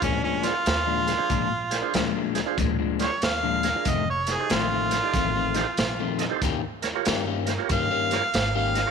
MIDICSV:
0, 0, Header, 1, 7, 480
1, 0, Start_track
1, 0, Tempo, 640342
1, 974, Time_signature, 4, 2, 24, 8
1, 6677, End_track
2, 0, Start_track
2, 0, Title_t, "Harmonica"
2, 0, Program_c, 0, 22
2, 27, Note_on_c, 0, 61, 101
2, 176, Note_off_c, 0, 61, 0
2, 181, Note_on_c, 0, 61, 95
2, 340, Note_on_c, 0, 65, 127
2, 351, Note_off_c, 0, 61, 0
2, 1748, Note_off_c, 0, 65, 0
2, 2269, Note_on_c, 0, 73, 102
2, 2417, Note_off_c, 0, 73, 0
2, 2428, Note_on_c, 0, 77, 101
2, 2920, Note_on_c, 0, 75, 85
2, 2932, Note_off_c, 0, 77, 0
2, 3063, Note_off_c, 0, 75, 0
2, 3073, Note_on_c, 0, 73, 90
2, 3237, Note_on_c, 0, 68, 88
2, 3248, Note_off_c, 0, 73, 0
2, 3389, Note_on_c, 0, 65, 116
2, 3400, Note_off_c, 0, 68, 0
2, 4792, Note_off_c, 0, 65, 0
2, 5791, Note_on_c, 0, 77, 122
2, 6403, Note_off_c, 0, 77, 0
2, 6422, Note_on_c, 0, 77, 102
2, 6677, Note_off_c, 0, 77, 0
2, 6677, End_track
3, 0, Start_track
3, 0, Title_t, "Tonewheel organ"
3, 0, Program_c, 1, 16
3, 317, Note_on_c, 1, 62, 70
3, 320, Note_on_c, 1, 65, 65
3, 324, Note_on_c, 1, 68, 60
3, 328, Note_on_c, 1, 72, 79
3, 406, Note_off_c, 1, 62, 0
3, 407, Note_off_c, 1, 65, 0
3, 409, Note_off_c, 1, 68, 0
3, 411, Note_off_c, 1, 72, 0
3, 800, Note_on_c, 1, 68, 63
3, 808, Note_on_c, 1, 72, 75
3, 844, Note_off_c, 1, 68, 0
3, 849, Note_off_c, 1, 72, 0
3, 880, Note_on_c, 1, 62, 66
3, 885, Note_on_c, 1, 65, 62
3, 887, Note_on_c, 1, 68, 63
3, 891, Note_on_c, 1, 72, 70
3, 970, Note_off_c, 1, 62, 0
3, 973, Note_off_c, 1, 65, 0
3, 974, Note_off_c, 1, 68, 0
3, 976, Note_off_c, 1, 72, 0
3, 1278, Note_on_c, 1, 68, 87
3, 1287, Note_on_c, 1, 72, 97
3, 1324, Note_off_c, 1, 68, 0
3, 1328, Note_off_c, 1, 72, 0
3, 1362, Note_on_c, 1, 62, 75
3, 1364, Note_on_c, 1, 65, 68
3, 1366, Note_on_c, 1, 68, 64
3, 1371, Note_on_c, 1, 72, 81
3, 1451, Note_off_c, 1, 62, 0
3, 1453, Note_off_c, 1, 65, 0
3, 1454, Note_off_c, 1, 68, 0
3, 1456, Note_off_c, 1, 72, 0
3, 1761, Note_on_c, 1, 68, 84
3, 1768, Note_on_c, 1, 72, 89
3, 1805, Note_off_c, 1, 68, 0
3, 1808, Note_off_c, 1, 72, 0
3, 1844, Note_on_c, 1, 62, 75
3, 1844, Note_on_c, 1, 65, 68
3, 1852, Note_on_c, 1, 68, 71
3, 1853, Note_on_c, 1, 72, 83
3, 1933, Note_off_c, 1, 62, 0
3, 1933, Note_off_c, 1, 65, 0
3, 1936, Note_off_c, 1, 68, 0
3, 1937, Note_off_c, 1, 72, 0
3, 2246, Note_on_c, 1, 62, 68
3, 2251, Note_on_c, 1, 65, 66
3, 2253, Note_on_c, 1, 68, 61
3, 2255, Note_on_c, 1, 72, 80
3, 2331, Note_off_c, 1, 62, 0
3, 2333, Note_off_c, 1, 65, 0
3, 2334, Note_off_c, 1, 68, 0
3, 2335, Note_off_c, 1, 72, 0
3, 2727, Note_on_c, 1, 68, 64
3, 2736, Note_on_c, 1, 70, 72
3, 2768, Note_off_c, 1, 68, 0
3, 2772, Note_off_c, 1, 70, 0
3, 2813, Note_on_c, 1, 62, 67
3, 2815, Note_on_c, 1, 65, 62
3, 2819, Note_on_c, 1, 68, 58
3, 2820, Note_on_c, 1, 70, 68
3, 2897, Note_off_c, 1, 62, 0
3, 2898, Note_off_c, 1, 65, 0
3, 2900, Note_off_c, 1, 68, 0
3, 2901, Note_off_c, 1, 70, 0
3, 3204, Note_on_c, 1, 69, 71
3, 3212, Note_on_c, 1, 72, 74
3, 3247, Note_off_c, 1, 69, 0
3, 3250, Note_off_c, 1, 72, 0
3, 3292, Note_on_c, 1, 63, 64
3, 3292, Note_on_c, 1, 67, 56
3, 3296, Note_on_c, 1, 69, 53
3, 3300, Note_on_c, 1, 72, 63
3, 3376, Note_off_c, 1, 63, 0
3, 3377, Note_off_c, 1, 67, 0
3, 3379, Note_off_c, 1, 69, 0
3, 3381, Note_off_c, 1, 72, 0
3, 3679, Note_on_c, 1, 69, 72
3, 3687, Note_on_c, 1, 72, 77
3, 3724, Note_off_c, 1, 69, 0
3, 3728, Note_off_c, 1, 72, 0
3, 3770, Note_on_c, 1, 63, 61
3, 3774, Note_on_c, 1, 67, 58
3, 3779, Note_on_c, 1, 69, 54
3, 3779, Note_on_c, 1, 74, 67
3, 3855, Note_off_c, 1, 63, 0
3, 3858, Note_off_c, 1, 67, 0
3, 3860, Note_off_c, 1, 69, 0
3, 3860, Note_off_c, 1, 74, 0
3, 4157, Note_on_c, 1, 63, 77
3, 4162, Note_on_c, 1, 67, 73
3, 4163, Note_on_c, 1, 69, 78
3, 4169, Note_on_c, 1, 72, 87
3, 4246, Note_off_c, 1, 63, 0
3, 4249, Note_off_c, 1, 67, 0
3, 4249, Note_off_c, 1, 69, 0
3, 4252, Note_off_c, 1, 72, 0
3, 4637, Note_on_c, 1, 69, 80
3, 4647, Note_on_c, 1, 75, 83
3, 4683, Note_off_c, 1, 69, 0
3, 4688, Note_off_c, 1, 75, 0
3, 4713, Note_on_c, 1, 63, 81
3, 4717, Note_on_c, 1, 67, 71
3, 4720, Note_on_c, 1, 69, 70
3, 4727, Note_on_c, 1, 72, 84
3, 4807, Note_off_c, 1, 63, 0
3, 4809, Note_off_c, 1, 67, 0
3, 4811, Note_off_c, 1, 69, 0
3, 4814, Note_off_c, 1, 72, 0
3, 5115, Note_on_c, 1, 70, 88
3, 5125, Note_on_c, 1, 73, 92
3, 5162, Note_off_c, 1, 70, 0
3, 5167, Note_off_c, 1, 73, 0
3, 5206, Note_on_c, 1, 65, 77
3, 5210, Note_on_c, 1, 67, 69
3, 5214, Note_on_c, 1, 70, 68
3, 5216, Note_on_c, 1, 73, 86
3, 5293, Note_off_c, 1, 65, 0
3, 5295, Note_off_c, 1, 67, 0
3, 5298, Note_off_c, 1, 70, 0
3, 5298, Note_off_c, 1, 73, 0
3, 5593, Note_on_c, 1, 70, 82
3, 5606, Note_on_c, 1, 72, 97
3, 5641, Note_off_c, 1, 70, 0
3, 5647, Note_off_c, 1, 72, 0
3, 5681, Note_on_c, 1, 65, 67
3, 5686, Note_on_c, 1, 67, 57
3, 5688, Note_on_c, 1, 70, 58
3, 5690, Note_on_c, 1, 73, 71
3, 5771, Note_off_c, 1, 65, 0
3, 5773, Note_off_c, 1, 67, 0
3, 5774, Note_off_c, 1, 70, 0
3, 5775, Note_off_c, 1, 73, 0
3, 6080, Note_on_c, 1, 65, 71
3, 6088, Note_on_c, 1, 67, 65
3, 6088, Note_on_c, 1, 70, 67
3, 6094, Note_on_c, 1, 73, 78
3, 6167, Note_off_c, 1, 65, 0
3, 6171, Note_off_c, 1, 67, 0
3, 6171, Note_off_c, 1, 70, 0
3, 6174, Note_off_c, 1, 73, 0
3, 6560, Note_on_c, 1, 70, 70
3, 6573, Note_on_c, 1, 75, 74
3, 6603, Note_off_c, 1, 70, 0
3, 6610, Note_off_c, 1, 75, 0
3, 6639, Note_on_c, 1, 65, 69
3, 6644, Note_on_c, 1, 67, 64
3, 6645, Note_on_c, 1, 70, 65
3, 6651, Note_on_c, 1, 73, 77
3, 6677, Note_off_c, 1, 65, 0
3, 6677, Note_off_c, 1, 67, 0
3, 6677, Note_off_c, 1, 70, 0
3, 6677, Note_off_c, 1, 73, 0
3, 6677, End_track
4, 0, Start_track
4, 0, Title_t, "Clean electric guitar"
4, 0, Program_c, 2, 27
4, 19, Note_on_c, 2, 46, 90
4, 24, Note_on_c, 2, 56, 92
4, 25, Note_on_c, 2, 53, 84
4, 27, Note_on_c, 2, 62, 95
4, 163, Note_off_c, 2, 62, 0
4, 168, Note_off_c, 2, 56, 0
4, 169, Note_off_c, 2, 53, 0
4, 170, Note_off_c, 2, 46, 0
4, 172, Note_on_c, 2, 62, 78
4, 177, Note_on_c, 2, 56, 68
4, 178, Note_on_c, 2, 53, 67
4, 183, Note_on_c, 2, 46, 68
4, 350, Note_off_c, 2, 62, 0
4, 353, Note_off_c, 2, 53, 0
4, 353, Note_off_c, 2, 56, 0
4, 355, Note_off_c, 2, 46, 0
4, 652, Note_on_c, 2, 62, 87
4, 653, Note_on_c, 2, 56, 85
4, 656, Note_on_c, 2, 53, 80
4, 659, Note_on_c, 2, 46, 77
4, 830, Note_off_c, 2, 56, 0
4, 830, Note_off_c, 2, 62, 0
4, 832, Note_off_c, 2, 53, 0
4, 834, Note_off_c, 2, 46, 0
4, 975, Note_on_c, 2, 46, 76
4, 981, Note_on_c, 2, 53, 91
4, 981, Note_on_c, 2, 56, 85
4, 984, Note_on_c, 2, 62, 98
4, 1124, Note_off_c, 2, 62, 0
4, 1126, Note_off_c, 2, 56, 0
4, 1129, Note_off_c, 2, 46, 0
4, 1130, Note_off_c, 2, 53, 0
4, 1460, Note_on_c, 2, 46, 86
4, 1464, Note_on_c, 2, 53, 82
4, 1465, Note_on_c, 2, 56, 90
4, 1465, Note_on_c, 2, 62, 89
4, 1605, Note_off_c, 2, 62, 0
4, 1609, Note_off_c, 2, 56, 0
4, 1612, Note_off_c, 2, 46, 0
4, 1613, Note_off_c, 2, 53, 0
4, 1614, Note_on_c, 2, 62, 80
4, 1618, Note_on_c, 2, 56, 71
4, 1621, Note_on_c, 2, 53, 64
4, 1622, Note_on_c, 2, 46, 65
4, 1791, Note_off_c, 2, 62, 0
4, 1794, Note_off_c, 2, 56, 0
4, 1795, Note_off_c, 2, 46, 0
4, 1795, Note_off_c, 2, 53, 0
4, 1937, Note_on_c, 2, 46, 91
4, 1940, Note_on_c, 2, 53, 84
4, 1942, Note_on_c, 2, 56, 85
4, 1945, Note_on_c, 2, 62, 86
4, 2079, Note_off_c, 2, 62, 0
4, 2081, Note_off_c, 2, 56, 0
4, 2083, Note_off_c, 2, 53, 0
4, 2088, Note_on_c, 2, 62, 69
4, 2090, Note_off_c, 2, 46, 0
4, 2090, Note_on_c, 2, 56, 74
4, 2092, Note_on_c, 2, 53, 66
4, 2098, Note_on_c, 2, 46, 61
4, 2268, Note_off_c, 2, 62, 0
4, 2269, Note_off_c, 2, 56, 0
4, 2270, Note_off_c, 2, 53, 0
4, 2273, Note_off_c, 2, 46, 0
4, 2571, Note_on_c, 2, 62, 88
4, 2575, Note_on_c, 2, 56, 83
4, 2577, Note_on_c, 2, 53, 78
4, 2580, Note_on_c, 2, 46, 71
4, 2750, Note_off_c, 2, 62, 0
4, 2752, Note_off_c, 2, 56, 0
4, 2753, Note_off_c, 2, 53, 0
4, 2755, Note_off_c, 2, 46, 0
4, 2892, Note_on_c, 2, 41, 83
4, 2894, Note_on_c, 2, 51, 84
4, 2898, Note_on_c, 2, 57, 86
4, 2902, Note_on_c, 2, 60, 93
4, 3041, Note_off_c, 2, 60, 0
4, 3044, Note_off_c, 2, 57, 0
4, 3048, Note_off_c, 2, 41, 0
4, 3049, Note_off_c, 2, 51, 0
4, 3378, Note_on_c, 2, 41, 82
4, 3381, Note_on_c, 2, 51, 90
4, 3383, Note_on_c, 2, 57, 96
4, 3385, Note_on_c, 2, 60, 95
4, 3525, Note_off_c, 2, 60, 0
4, 3528, Note_off_c, 2, 51, 0
4, 3528, Note_off_c, 2, 57, 0
4, 3531, Note_off_c, 2, 41, 0
4, 3534, Note_on_c, 2, 60, 77
4, 3537, Note_on_c, 2, 51, 67
4, 3537, Note_on_c, 2, 57, 71
4, 3542, Note_on_c, 2, 41, 60
4, 3711, Note_off_c, 2, 60, 0
4, 3713, Note_off_c, 2, 51, 0
4, 3713, Note_off_c, 2, 57, 0
4, 3715, Note_off_c, 2, 41, 0
4, 3862, Note_on_c, 2, 41, 78
4, 3865, Note_on_c, 2, 51, 79
4, 3868, Note_on_c, 2, 57, 88
4, 3870, Note_on_c, 2, 60, 85
4, 4004, Note_off_c, 2, 60, 0
4, 4006, Note_off_c, 2, 57, 0
4, 4010, Note_off_c, 2, 51, 0
4, 4012, Note_off_c, 2, 41, 0
4, 4013, Note_on_c, 2, 60, 74
4, 4015, Note_on_c, 2, 57, 70
4, 4019, Note_on_c, 2, 51, 69
4, 4021, Note_on_c, 2, 41, 62
4, 4191, Note_off_c, 2, 60, 0
4, 4192, Note_off_c, 2, 57, 0
4, 4194, Note_off_c, 2, 51, 0
4, 4195, Note_off_c, 2, 41, 0
4, 4496, Note_on_c, 2, 57, 86
4, 4497, Note_on_c, 2, 60, 90
4, 4502, Note_on_c, 2, 51, 77
4, 4505, Note_on_c, 2, 41, 73
4, 4672, Note_off_c, 2, 57, 0
4, 4673, Note_off_c, 2, 60, 0
4, 4675, Note_off_c, 2, 51, 0
4, 4677, Note_off_c, 2, 41, 0
4, 4820, Note_on_c, 2, 51, 87
4, 4822, Note_on_c, 2, 58, 82
4, 4826, Note_on_c, 2, 61, 89
4, 4828, Note_on_c, 2, 67, 94
4, 4965, Note_off_c, 2, 67, 0
4, 4968, Note_off_c, 2, 61, 0
4, 4971, Note_off_c, 2, 51, 0
4, 4972, Note_off_c, 2, 58, 0
4, 5299, Note_on_c, 2, 51, 79
4, 5301, Note_on_c, 2, 58, 85
4, 5307, Note_on_c, 2, 61, 93
4, 5307, Note_on_c, 2, 67, 90
4, 5441, Note_off_c, 2, 67, 0
4, 5442, Note_off_c, 2, 61, 0
4, 5447, Note_off_c, 2, 58, 0
4, 5450, Note_on_c, 2, 67, 70
4, 5451, Note_off_c, 2, 51, 0
4, 5451, Note_on_c, 2, 61, 72
4, 5456, Note_on_c, 2, 58, 68
4, 5458, Note_on_c, 2, 51, 61
4, 5629, Note_off_c, 2, 67, 0
4, 5630, Note_off_c, 2, 61, 0
4, 5632, Note_off_c, 2, 58, 0
4, 5633, Note_off_c, 2, 51, 0
4, 5781, Note_on_c, 2, 51, 85
4, 5783, Note_on_c, 2, 58, 87
4, 5785, Note_on_c, 2, 61, 93
4, 5787, Note_on_c, 2, 67, 94
4, 5919, Note_off_c, 2, 67, 0
4, 5921, Note_off_c, 2, 61, 0
4, 5926, Note_off_c, 2, 58, 0
4, 5928, Note_off_c, 2, 51, 0
4, 5928, Note_on_c, 2, 67, 78
4, 5930, Note_on_c, 2, 61, 77
4, 5935, Note_on_c, 2, 58, 70
4, 5937, Note_on_c, 2, 51, 61
4, 6107, Note_off_c, 2, 67, 0
4, 6108, Note_off_c, 2, 61, 0
4, 6111, Note_off_c, 2, 58, 0
4, 6112, Note_off_c, 2, 51, 0
4, 6412, Note_on_c, 2, 67, 102
4, 6415, Note_on_c, 2, 61, 82
4, 6416, Note_on_c, 2, 58, 78
4, 6421, Note_on_c, 2, 51, 81
4, 6589, Note_off_c, 2, 67, 0
4, 6591, Note_off_c, 2, 58, 0
4, 6591, Note_off_c, 2, 61, 0
4, 6594, Note_off_c, 2, 51, 0
4, 6677, End_track
5, 0, Start_track
5, 0, Title_t, "Upright bass"
5, 0, Program_c, 3, 32
5, 17, Note_on_c, 3, 38, 92
5, 381, Note_off_c, 3, 38, 0
5, 499, Note_on_c, 3, 39, 91
5, 863, Note_off_c, 3, 39, 0
5, 973, Note_on_c, 3, 34, 87
5, 1339, Note_off_c, 3, 34, 0
5, 1456, Note_on_c, 3, 38, 86
5, 1821, Note_off_c, 3, 38, 0
5, 1931, Note_on_c, 3, 38, 94
5, 2298, Note_off_c, 3, 38, 0
5, 2419, Note_on_c, 3, 39, 89
5, 2783, Note_off_c, 3, 39, 0
5, 2890, Note_on_c, 3, 29, 87
5, 3257, Note_off_c, 3, 29, 0
5, 3374, Note_on_c, 3, 33, 91
5, 3740, Note_off_c, 3, 33, 0
5, 3851, Note_on_c, 3, 33, 91
5, 4218, Note_off_c, 3, 33, 0
5, 4333, Note_on_c, 3, 34, 89
5, 4699, Note_off_c, 3, 34, 0
5, 4809, Note_on_c, 3, 39, 86
5, 5176, Note_off_c, 3, 39, 0
5, 5294, Note_on_c, 3, 43, 92
5, 5659, Note_off_c, 3, 43, 0
5, 5769, Note_on_c, 3, 43, 91
5, 6136, Note_off_c, 3, 43, 0
5, 6253, Note_on_c, 3, 32, 90
5, 6618, Note_off_c, 3, 32, 0
5, 6677, End_track
6, 0, Start_track
6, 0, Title_t, "Muted clean electric guitar strokes"
6, 891, Note_on_c, 9, 29, 46
6, 966, Note_off_c, 9, 29, 0
6, 1133, Note_on_c, 9, 29, 47
6, 1208, Note_off_c, 9, 29, 0
6, 2810, Note_on_c, 9, 29, 47
6, 2885, Note_off_c, 9, 29, 0
6, 3050, Note_on_c, 9, 29, 47
6, 3124, Note_off_c, 9, 29, 0
6, 4734, Note_on_c, 9, 29, 50
6, 4809, Note_off_c, 9, 29, 0
6, 4974, Note_on_c, 9, 29, 50
6, 5049, Note_off_c, 9, 29, 0
6, 6677, End_track
7, 0, Start_track
7, 0, Title_t, "Drums"
7, 15, Note_on_c, 9, 36, 99
7, 15, Note_on_c, 9, 42, 82
7, 90, Note_off_c, 9, 36, 0
7, 90, Note_off_c, 9, 42, 0
7, 325, Note_on_c, 9, 42, 60
7, 335, Note_on_c, 9, 38, 34
7, 400, Note_off_c, 9, 42, 0
7, 410, Note_off_c, 9, 38, 0
7, 494, Note_on_c, 9, 42, 79
7, 505, Note_on_c, 9, 38, 106
7, 569, Note_off_c, 9, 42, 0
7, 580, Note_off_c, 9, 38, 0
7, 805, Note_on_c, 9, 42, 56
7, 816, Note_on_c, 9, 38, 33
7, 880, Note_off_c, 9, 42, 0
7, 891, Note_off_c, 9, 38, 0
7, 973, Note_on_c, 9, 42, 74
7, 975, Note_on_c, 9, 36, 104
7, 1048, Note_off_c, 9, 42, 0
7, 1050, Note_off_c, 9, 36, 0
7, 1282, Note_on_c, 9, 42, 59
7, 1293, Note_on_c, 9, 38, 33
7, 1357, Note_off_c, 9, 42, 0
7, 1368, Note_off_c, 9, 38, 0
7, 1452, Note_on_c, 9, 42, 77
7, 1462, Note_on_c, 9, 38, 100
7, 1527, Note_off_c, 9, 42, 0
7, 1537, Note_off_c, 9, 38, 0
7, 1762, Note_on_c, 9, 42, 59
7, 1772, Note_on_c, 9, 38, 36
7, 1837, Note_off_c, 9, 42, 0
7, 1847, Note_off_c, 9, 38, 0
7, 1932, Note_on_c, 9, 36, 101
7, 1932, Note_on_c, 9, 42, 79
7, 2007, Note_off_c, 9, 36, 0
7, 2007, Note_off_c, 9, 42, 0
7, 2244, Note_on_c, 9, 42, 60
7, 2255, Note_on_c, 9, 38, 34
7, 2319, Note_off_c, 9, 42, 0
7, 2330, Note_off_c, 9, 38, 0
7, 2412, Note_on_c, 9, 42, 81
7, 2422, Note_on_c, 9, 38, 110
7, 2487, Note_off_c, 9, 42, 0
7, 2497, Note_off_c, 9, 38, 0
7, 2722, Note_on_c, 9, 42, 62
7, 2733, Note_on_c, 9, 38, 33
7, 2797, Note_off_c, 9, 42, 0
7, 2808, Note_off_c, 9, 38, 0
7, 2887, Note_on_c, 9, 42, 86
7, 2891, Note_on_c, 9, 36, 107
7, 2962, Note_off_c, 9, 42, 0
7, 2966, Note_off_c, 9, 36, 0
7, 3198, Note_on_c, 9, 42, 61
7, 3208, Note_on_c, 9, 38, 32
7, 3273, Note_off_c, 9, 42, 0
7, 3283, Note_off_c, 9, 38, 0
7, 3371, Note_on_c, 9, 42, 82
7, 3381, Note_on_c, 9, 38, 101
7, 3446, Note_off_c, 9, 42, 0
7, 3456, Note_off_c, 9, 38, 0
7, 3680, Note_on_c, 9, 42, 69
7, 3691, Note_on_c, 9, 38, 33
7, 3755, Note_off_c, 9, 42, 0
7, 3766, Note_off_c, 9, 38, 0
7, 3849, Note_on_c, 9, 42, 80
7, 3850, Note_on_c, 9, 36, 102
7, 3860, Note_on_c, 9, 38, 29
7, 3924, Note_off_c, 9, 42, 0
7, 3925, Note_off_c, 9, 36, 0
7, 3935, Note_off_c, 9, 38, 0
7, 4155, Note_on_c, 9, 42, 62
7, 4166, Note_on_c, 9, 38, 32
7, 4230, Note_off_c, 9, 42, 0
7, 4241, Note_off_c, 9, 38, 0
7, 4327, Note_on_c, 9, 42, 82
7, 4338, Note_on_c, 9, 38, 108
7, 4402, Note_off_c, 9, 42, 0
7, 4413, Note_off_c, 9, 38, 0
7, 4638, Note_on_c, 9, 42, 60
7, 4649, Note_on_c, 9, 38, 33
7, 4713, Note_off_c, 9, 42, 0
7, 4724, Note_off_c, 9, 38, 0
7, 4810, Note_on_c, 9, 36, 107
7, 4810, Note_on_c, 9, 42, 83
7, 4821, Note_on_c, 9, 38, 31
7, 4885, Note_off_c, 9, 36, 0
7, 4885, Note_off_c, 9, 42, 0
7, 4896, Note_off_c, 9, 38, 0
7, 5115, Note_on_c, 9, 42, 57
7, 5126, Note_on_c, 9, 38, 35
7, 5190, Note_off_c, 9, 42, 0
7, 5201, Note_off_c, 9, 38, 0
7, 5287, Note_on_c, 9, 42, 80
7, 5297, Note_on_c, 9, 38, 111
7, 5362, Note_off_c, 9, 42, 0
7, 5372, Note_off_c, 9, 38, 0
7, 5597, Note_on_c, 9, 42, 60
7, 5607, Note_on_c, 9, 38, 33
7, 5671, Note_off_c, 9, 42, 0
7, 5682, Note_off_c, 9, 38, 0
7, 5767, Note_on_c, 9, 42, 77
7, 5770, Note_on_c, 9, 36, 102
7, 5842, Note_off_c, 9, 42, 0
7, 5845, Note_off_c, 9, 36, 0
7, 6078, Note_on_c, 9, 42, 59
7, 6089, Note_on_c, 9, 38, 36
7, 6153, Note_off_c, 9, 42, 0
7, 6164, Note_off_c, 9, 38, 0
7, 6249, Note_on_c, 9, 42, 81
7, 6260, Note_on_c, 9, 38, 111
7, 6324, Note_off_c, 9, 42, 0
7, 6335, Note_off_c, 9, 38, 0
7, 6561, Note_on_c, 9, 42, 60
7, 6571, Note_on_c, 9, 38, 34
7, 6636, Note_off_c, 9, 42, 0
7, 6646, Note_off_c, 9, 38, 0
7, 6677, End_track
0, 0, End_of_file